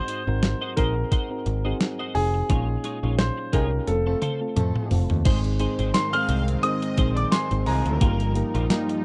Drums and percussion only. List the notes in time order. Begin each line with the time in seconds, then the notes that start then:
0.08 closed hi-hat
0.43 snare, closed hi-hat
0.77 kick, closed hi-hat
1.12 kick, closed hi-hat
1.46 closed hi-hat
1.80 snare, closed hi-hat
2.15 open hi-hat
2.50 kick, closed hi-hat
2.84 closed hi-hat
3.19 snare, closed hi-hat
3.53 kick, closed hi-hat
3.87 closed hi-hat, high tom
4.22 closed hi-hat, mid tom
4.56 closed hi-hat, mid tom
4.76 mid tom
4.91 floor tom, open hi-hat
5.10 floor tom
5.25 kick, closed hi-hat, crash
5.44 closed hi-hat
5.60 closed hi-hat
5.79 closed hi-hat
5.94 snare, closed hi-hat, tambourine
6.13 closed hi-hat
6.29 closed hi-hat
6.48 closed hi-hat
6.63 closed hi-hat
6.82 closed hi-hat
6.97 kick, closed hi-hat
7.17 closed hi-hat
7.32 snare, closed hi-hat, tambourine
7.51 closed hi-hat
7.66 open hi-hat
7.86 closed hi-hat
8.01 kick, closed hi-hat
8.20 closed hi-hat
8.35 closed hi-hat
8.55 closed hi-hat
8.70 snare, closed hi-hat, tambourine
8.89 closed hi-hat